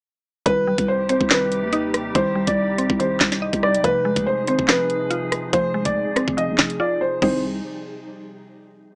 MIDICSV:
0, 0, Header, 1, 6, 480
1, 0, Start_track
1, 0, Key_signature, -3, "minor"
1, 0, Tempo, 422535
1, 523, Time_signature, 4, 2, 24, 8
1, 10167, End_track
2, 0, Start_track
2, 0, Title_t, "Grand piano"
2, 0, Program_c, 0, 0
2, 523, Note_on_c, 0, 71, 104
2, 974, Note_off_c, 0, 71, 0
2, 1003, Note_on_c, 0, 72, 89
2, 1215, Note_off_c, 0, 72, 0
2, 1243, Note_on_c, 0, 72, 83
2, 1455, Note_off_c, 0, 72, 0
2, 1484, Note_on_c, 0, 71, 84
2, 2398, Note_off_c, 0, 71, 0
2, 2445, Note_on_c, 0, 72, 100
2, 2789, Note_off_c, 0, 72, 0
2, 2809, Note_on_c, 0, 74, 79
2, 3367, Note_off_c, 0, 74, 0
2, 3403, Note_on_c, 0, 72, 81
2, 4080, Note_off_c, 0, 72, 0
2, 4124, Note_on_c, 0, 74, 89
2, 4335, Note_off_c, 0, 74, 0
2, 4363, Note_on_c, 0, 71, 100
2, 4814, Note_off_c, 0, 71, 0
2, 4844, Note_on_c, 0, 72, 92
2, 5055, Note_off_c, 0, 72, 0
2, 5084, Note_on_c, 0, 72, 81
2, 5295, Note_off_c, 0, 72, 0
2, 5324, Note_on_c, 0, 71, 95
2, 6238, Note_off_c, 0, 71, 0
2, 6283, Note_on_c, 0, 72, 112
2, 6628, Note_off_c, 0, 72, 0
2, 6652, Note_on_c, 0, 74, 83
2, 7208, Note_off_c, 0, 74, 0
2, 7243, Note_on_c, 0, 75, 82
2, 7694, Note_off_c, 0, 75, 0
2, 7724, Note_on_c, 0, 74, 76
2, 7935, Note_off_c, 0, 74, 0
2, 7963, Note_on_c, 0, 72, 78
2, 8175, Note_off_c, 0, 72, 0
2, 8204, Note_on_c, 0, 72, 85
2, 8427, Note_off_c, 0, 72, 0
2, 10167, End_track
3, 0, Start_track
3, 0, Title_t, "Ambient pad"
3, 0, Program_c, 1, 92
3, 522, Note_on_c, 1, 63, 76
3, 523, Note_on_c, 1, 48, 83
3, 523, Note_on_c, 1, 55, 74
3, 523, Note_on_c, 1, 67, 94
3, 4325, Note_off_c, 1, 55, 0
3, 4325, Note_off_c, 1, 67, 0
3, 4364, Note_on_c, 1, 53, 78
3, 4364, Note_on_c, 1, 68, 91
3, 8157, Note_off_c, 1, 63, 0
3, 8158, Note_off_c, 1, 48, 0
3, 8165, Note_off_c, 1, 53, 0
3, 8165, Note_off_c, 1, 68, 0
3, 8202, Note_on_c, 1, 67, 80
3, 8203, Note_on_c, 1, 48, 73
3, 8203, Note_on_c, 1, 55, 68
3, 8203, Note_on_c, 1, 63, 65
3, 8426, Note_off_c, 1, 48, 0
3, 8426, Note_off_c, 1, 63, 0
3, 8426, Note_off_c, 1, 67, 0
3, 8427, Note_off_c, 1, 55, 0
3, 10167, End_track
4, 0, Start_track
4, 0, Title_t, "Synth pluck"
4, 0, Program_c, 2, 84
4, 520, Note_on_c, 2, 51, 90
4, 766, Note_on_c, 2, 55, 77
4, 1241, Note_on_c, 2, 60, 89
4, 1469, Note_off_c, 2, 51, 0
4, 1483, Note_on_c, 2, 51, 88
4, 1962, Note_on_c, 2, 63, 101
4, 1965, Note_off_c, 2, 55, 0
4, 2432, Note_off_c, 2, 51, 0
4, 2442, Note_off_c, 2, 60, 0
4, 2446, Note_on_c, 2, 51, 100
4, 2674, Note_on_c, 2, 55, 78
4, 3161, Note_on_c, 2, 60, 86
4, 3163, Note_off_c, 2, 63, 0
4, 3388, Note_off_c, 2, 51, 0
4, 3402, Note_on_c, 2, 51, 88
4, 3878, Note_off_c, 2, 55, 0
4, 3885, Note_on_c, 2, 75, 90
4, 4362, Note_off_c, 2, 51, 0
4, 4362, Note_off_c, 2, 60, 0
4, 4364, Note_off_c, 2, 75, 0
4, 4364, Note_on_c, 2, 53, 93
4, 4602, Note_on_c, 2, 56, 83
4, 5090, Note_on_c, 2, 60, 87
4, 5303, Note_off_c, 2, 53, 0
4, 5317, Note_on_c, 2, 53, 95
4, 5799, Note_on_c, 2, 65, 97
4, 5803, Note_off_c, 2, 56, 0
4, 6270, Note_off_c, 2, 53, 0
4, 6283, Note_on_c, 2, 53, 99
4, 6287, Note_off_c, 2, 60, 0
4, 6524, Note_on_c, 2, 56, 87
4, 6998, Note_on_c, 2, 60, 90
4, 7001, Note_off_c, 2, 65, 0
4, 7225, Note_off_c, 2, 53, 0
4, 7238, Note_on_c, 2, 53, 88
4, 7722, Note_on_c, 2, 65, 95
4, 7724, Note_off_c, 2, 56, 0
4, 8191, Note_off_c, 2, 60, 0
4, 8201, Note_off_c, 2, 53, 0
4, 8203, Note_off_c, 2, 65, 0
4, 8204, Note_on_c, 2, 51, 86
4, 8204, Note_on_c, 2, 55, 79
4, 8204, Note_on_c, 2, 60, 79
4, 8204, Note_on_c, 2, 63, 94
4, 8427, Note_off_c, 2, 51, 0
4, 8427, Note_off_c, 2, 55, 0
4, 8427, Note_off_c, 2, 60, 0
4, 8427, Note_off_c, 2, 63, 0
4, 10167, End_track
5, 0, Start_track
5, 0, Title_t, "808-style bass"
5, 0, Program_c, 3, 38
5, 523, Note_on_c, 3, 36, 105
5, 762, Note_on_c, 3, 35, 96
5, 779, Note_off_c, 3, 36, 0
5, 883, Note_off_c, 3, 35, 0
5, 890, Note_on_c, 3, 36, 99
5, 1351, Note_off_c, 3, 36, 0
5, 1370, Note_on_c, 3, 36, 103
5, 1850, Note_on_c, 3, 39, 105
5, 1867, Note_off_c, 3, 36, 0
5, 2413, Note_off_c, 3, 39, 0
5, 2443, Note_on_c, 3, 36, 111
5, 2796, Note_off_c, 3, 36, 0
5, 2810, Note_on_c, 3, 36, 100
5, 3271, Note_off_c, 3, 36, 0
5, 3291, Note_on_c, 3, 36, 102
5, 3629, Note_off_c, 3, 36, 0
5, 3642, Note_on_c, 3, 36, 104
5, 3995, Note_off_c, 3, 36, 0
5, 4011, Note_on_c, 3, 36, 109
5, 4250, Note_on_c, 3, 35, 105
5, 4267, Note_off_c, 3, 36, 0
5, 4358, Note_off_c, 3, 35, 0
5, 4363, Note_on_c, 3, 29, 112
5, 4716, Note_off_c, 3, 29, 0
5, 4730, Note_on_c, 3, 29, 105
5, 5084, Note_on_c, 3, 32, 103
5, 5101, Note_off_c, 3, 29, 0
5, 5204, Note_off_c, 3, 32, 0
5, 5211, Note_on_c, 3, 29, 101
5, 6240, Note_off_c, 3, 29, 0
5, 6283, Note_on_c, 3, 29, 116
5, 6636, Note_off_c, 3, 29, 0
5, 6650, Note_on_c, 3, 29, 100
5, 6881, Note_off_c, 3, 29, 0
5, 7131, Note_on_c, 3, 29, 106
5, 7371, Note_on_c, 3, 41, 101
5, 7388, Note_off_c, 3, 29, 0
5, 7475, Note_off_c, 3, 41, 0
5, 7482, Note_on_c, 3, 29, 103
5, 7723, Note_off_c, 3, 29, 0
5, 8203, Note_on_c, 3, 36, 112
5, 8650, Note_off_c, 3, 36, 0
5, 10167, End_track
6, 0, Start_track
6, 0, Title_t, "Drums"
6, 523, Note_on_c, 9, 36, 114
6, 523, Note_on_c, 9, 42, 86
6, 636, Note_off_c, 9, 36, 0
6, 637, Note_off_c, 9, 42, 0
6, 888, Note_on_c, 9, 42, 88
6, 890, Note_on_c, 9, 36, 95
6, 1001, Note_off_c, 9, 42, 0
6, 1003, Note_off_c, 9, 36, 0
6, 1241, Note_on_c, 9, 42, 80
6, 1355, Note_off_c, 9, 42, 0
6, 1370, Note_on_c, 9, 36, 101
6, 1475, Note_on_c, 9, 39, 104
6, 1484, Note_off_c, 9, 36, 0
6, 1484, Note_on_c, 9, 38, 127
6, 1588, Note_off_c, 9, 39, 0
6, 1597, Note_off_c, 9, 38, 0
6, 1723, Note_on_c, 9, 42, 76
6, 1836, Note_off_c, 9, 42, 0
6, 1960, Note_on_c, 9, 42, 76
6, 2074, Note_off_c, 9, 42, 0
6, 2204, Note_on_c, 9, 37, 89
6, 2205, Note_on_c, 9, 42, 85
6, 2318, Note_off_c, 9, 37, 0
6, 2318, Note_off_c, 9, 42, 0
6, 2443, Note_on_c, 9, 36, 112
6, 2444, Note_on_c, 9, 42, 84
6, 2557, Note_off_c, 9, 36, 0
6, 2557, Note_off_c, 9, 42, 0
6, 2808, Note_on_c, 9, 42, 86
6, 2810, Note_on_c, 9, 36, 93
6, 2922, Note_off_c, 9, 42, 0
6, 2924, Note_off_c, 9, 36, 0
6, 3162, Note_on_c, 9, 42, 78
6, 3276, Note_off_c, 9, 42, 0
6, 3291, Note_on_c, 9, 36, 101
6, 3404, Note_off_c, 9, 36, 0
6, 3407, Note_on_c, 9, 42, 76
6, 3520, Note_off_c, 9, 42, 0
6, 3635, Note_on_c, 9, 39, 89
6, 3642, Note_on_c, 9, 36, 95
6, 3644, Note_on_c, 9, 38, 117
6, 3749, Note_off_c, 9, 39, 0
6, 3756, Note_off_c, 9, 36, 0
6, 3758, Note_off_c, 9, 38, 0
6, 3771, Note_on_c, 9, 38, 68
6, 3771, Note_on_c, 9, 42, 89
6, 3885, Note_off_c, 9, 38, 0
6, 3885, Note_off_c, 9, 42, 0
6, 4011, Note_on_c, 9, 36, 94
6, 4011, Note_on_c, 9, 42, 74
6, 4124, Note_off_c, 9, 42, 0
6, 4124, Note_on_c, 9, 37, 93
6, 4125, Note_off_c, 9, 36, 0
6, 4238, Note_off_c, 9, 37, 0
6, 4254, Note_on_c, 9, 42, 90
6, 4363, Note_on_c, 9, 36, 109
6, 4364, Note_off_c, 9, 42, 0
6, 4364, Note_on_c, 9, 42, 82
6, 4477, Note_off_c, 9, 36, 0
6, 4477, Note_off_c, 9, 42, 0
6, 4728, Note_on_c, 9, 42, 86
6, 4730, Note_on_c, 9, 36, 95
6, 4842, Note_off_c, 9, 42, 0
6, 4844, Note_off_c, 9, 36, 0
6, 5083, Note_on_c, 9, 42, 79
6, 5196, Note_off_c, 9, 42, 0
6, 5211, Note_on_c, 9, 36, 102
6, 5315, Note_on_c, 9, 39, 100
6, 5324, Note_off_c, 9, 36, 0
6, 5324, Note_on_c, 9, 38, 127
6, 5429, Note_off_c, 9, 39, 0
6, 5438, Note_off_c, 9, 38, 0
6, 5563, Note_on_c, 9, 42, 74
6, 5677, Note_off_c, 9, 42, 0
6, 5800, Note_on_c, 9, 42, 78
6, 5914, Note_off_c, 9, 42, 0
6, 6044, Note_on_c, 9, 37, 92
6, 6044, Note_on_c, 9, 42, 85
6, 6157, Note_off_c, 9, 37, 0
6, 6158, Note_off_c, 9, 42, 0
6, 6283, Note_on_c, 9, 36, 112
6, 6284, Note_on_c, 9, 42, 83
6, 6397, Note_off_c, 9, 36, 0
6, 6397, Note_off_c, 9, 42, 0
6, 6648, Note_on_c, 9, 42, 88
6, 6650, Note_on_c, 9, 36, 99
6, 6762, Note_off_c, 9, 42, 0
6, 6764, Note_off_c, 9, 36, 0
6, 7002, Note_on_c, 9, 42, 77
6, 7003, Note_on_c, 9, 37, 95
6, 7115, Note_off_c, 9, 42, 0
6, 7117, Note_off_c, 9, 37, 0
6, 7130, Note_on_c, 9, 36, 99
6, 7244, Note_off_c, 9, 36, 0
6, 7246, Note_on_c, 9, 42, 80
6, 7360, Note_off_c, 9, 42, 0
6, 7474, Note_on_c, 9, 39, 93
6, 7482, Note_on_c, 9, 36, 93
6, 7483, Note_on_c, 9, 38, 112
6, 7588, Note_off_c, 9, 39, 0
6, 7595, Note_off_c, 9, 36, 0
6, 7597, Note_off_c, 9, 38, 0
6, 7610, Note_on_c, 9, 42, 89
6, 7724, Note_off_c, 9, 42, 0
6, 8203, Note_on_c, 9, 36, 106
6, 8203, Note_on_c, 9, 49, 85
6, 8317, Note_off_c, 9, 36, 0
6, 8317, Note_off_c, 9, 49, 0
6, 10167, End_track
0, 0, End_of_file